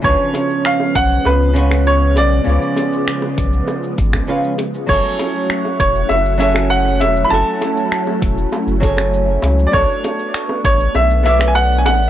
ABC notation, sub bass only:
X:1
M:4/4
L:1/16
Q:1/4=99
K:F#m
V:1 name="Sub bass" clef=bass
C,, z4 z B,,,2 C,,6 B,,,2 | C,, z4 z B,,,2 z2 G,,,2 z4 | F,,, z4 z E,,,2 F,,,6 E,,,2 | F,,, z4 z E,,,2 z F,,,4- F,,, C,,2 |
B,,, z4 z A,,,2 B,,,6 A,,,2 |]